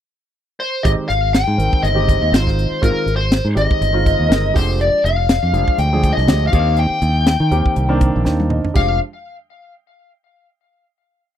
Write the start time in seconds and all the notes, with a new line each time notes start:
0.60 C5
0.83 G#1 D#3 G#3 C4 G4 D#5, kick, closed hi-hat
0.99 muted fingered electric bass stroke
1.07 G#1 C4 G4 F5, closed hi-hat
1.33 G5, snare, closed hi-hat
1.46 G#2 C4 G4
1.57 G#1 D#3 G#3 C4 A#4, closed hi-hat
1.73 muted fingered electric bass stroke, kick
1.83 G1 D#5, closed hi-hat
1.94 D#3 G#3 C4 G4
2.09 kick, closed hi-hat
2.22 D#2
2.32 G#1 D#3 G#3 C4 F4 C5, snare, closed hi-hat
2.47 kick, snare
2.59 closed hi-hat
2.71 muted fingered electric bass stroke
2.81 G#1 D#3 G#3 C4 F4 A#4, kick, closed hi-hat
3.06 G#1 C4 G4, closed hi-hat
3.16 C5
3.32 snare, closed hi-hat
3.45 G#2 C4 G4
3.55 G#1 D#3 G#3 C4 G4 D#5, closed hi-hat
3.71 muted fingered electric bass stroke, kick
3.81 G1, closed hi-hat
3.93 D#3 G#3 C4 F4
4.06 kick, closed hi-hat
4.20 D#2
4.28 G1 D#3 G#3 C4 A#4, snare, closed hi-hat
4.53 F1 F3 G#3 D4 G4 C5, kick, open hi-hat
4.81 D5, closed hi-hat
4.93 muted fingered electric bass stroke
5.04 F1 D4 G4 F5, closed hi-hat
5.29 snare, closed hi-hat
5.43 F2 D4 G#4
5.53 F1 F3 G#3 D4 G#4, closed hi-hat
5.68 kick
5.78 D2 G5, closed hi-hat
5.93 F3 G#3 D4 G#4
6.03 kick, closed hi-hat
6.13 D#5
6.17 C2, snare
6.28 D2 F3 G#3 D4 G4, snare, closed hi-hat
6.47 D#3 F5
6.52 D#2 A#3 C4 G4, kick, closed hi-hat
6.77 G5, closed hi-hat
6.90 muted fingered electric bass stroke
7.02 D#2 D4, closed hi-hat
7.27 snare, closed hi-hat
7.40 D#3 C4 A#4
7.51 D#2 D#3 A#3 C4 G4, closed hi-hat
7.66 muted fingered electric bass stroke, kick
7.76 C2, closed hi-hat
7.89 D#3 A#3 C4 D4
8.01 kick, closed hi-hat
8.16 A#1
8.24 D#2 D#3 A#3 C4 D4 G5, snare
8.40 high tom
8.50 D#5, mid tom
8.65 muted fingered electric bass stroke, floor tom
8.74 F1 F3 G#3 D4 G4 F5, kick, crash